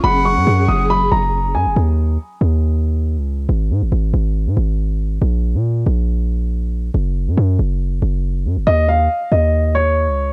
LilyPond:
<<
  \new Staff \with { instrumentName = "Grand piano" } { \time 4/4 \key des \mixolydian \tempo 4 = 139 ces'''8 des'''4 ees'''8 ces'''8 bes''4 aes''8 | r1 | r1 | r1 |
r1 | ees''8 f''4 ees''4 des''4. | }
  \new Staff \with { instrumentName = "Flute" } { \time 4/4 \key des \mixolydian ges''2 r2 | r1 | r1 | r1 |
r1 | r1 | }
  \new Staff \with { instrumentName = "String section" } { \time 4/4 \key des \mixolydian <ges des' aes'>1 | r1 | r1 | r1 |
r1 | r1 | }
  \new Staff \with { instrumentName = "808-style bass" } { \clef bass \time 4/4 \key des \mixolydian ges,,8. ges,16 ges,8 ges,,4 ges,,4 ges,16 ges,,16 | ees,4 r8 ees,4.~ ees,16 des,8. | aes,,8 aes,16 aes,,16 aes,,8 aes,,8. aes,16 aes,,4. | bes,,8. bes,8. bes,,2~ bes,,8 |
ges,,8. ges,16 ges,8 ges,,4 ges,,4 ges,16 ges,,16 | ees,4 r8 ees,4.~ ees,16 des,8. | }
>>